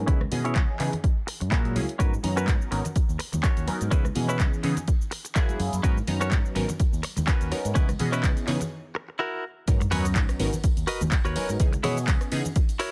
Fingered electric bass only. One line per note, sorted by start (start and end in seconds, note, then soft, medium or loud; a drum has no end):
0.08 0.24 C#2 medium
0.32 0.57 B2 medium
0.56 0.64 C#2 medium
0.80 0.88 C#3 medium
1.41 1.52 F#2 medium
1.52 1.77 A#2 medium
1.76 1.84 C#2 loud
2.00 2.16 G#2 medium
2.24 2.48 F#2 medium
2.48 2.56 G#2 medium
2.72 2.80 G#1 medium
2.96 muted fingered electric bass stroke soft
3.09 3.16 D#2 medium
3.33 3.40 D#2 loud
3.57 3.67 D#2 medium
3.68 muted fingered electric bass stroke soft
3.81 3.88 G#2 medium
3.92 4.08 C#2 medium
4.16 4.41 B2 medium
4.40 4.48 C#2 medium
4.64 4.72 C#3 medium
5.60 5.68 F#2 loud
5.73 5.80 F#2 medium
5.84 6.00 G#2 medium
6.08 6.32 F#2 medium
6.32 6.40 G#2 medium
6.56 6.64 G#1 medium
6.80 muted fingered electric bass stroke soft
6.93 7.00 D#2 loud
7.17 7.24 D#2 loud
7.41 7.51 D#2 medium
7.52 muted fingered electric bass stroke soft
7.65 7.72 G#2 medium
8.00 8.25 B2 medium
8.24 8.32 C#2 medium
8.48 8.56 C#3 medium
9.68 9.84 G#2 loud
9.92 10.16 F#2 medium
10.16 10.24 G#2 medium
10.40 10.48 G#1 medium
10.64 muted fingered electric bass stroke soft
10.77 10.84 D#2 medium
11.01 11.08 D#2 loud
11.25 11.35 D#2 medium
11.36 muted fingered electric bass stroke soft
11.49 11.56 G#2 medium
11.60 11.76 C#2 loud
11.84 12.09 B2 medium
12.08 12.16 C#2 medium
12.32 12.40 C#3 medium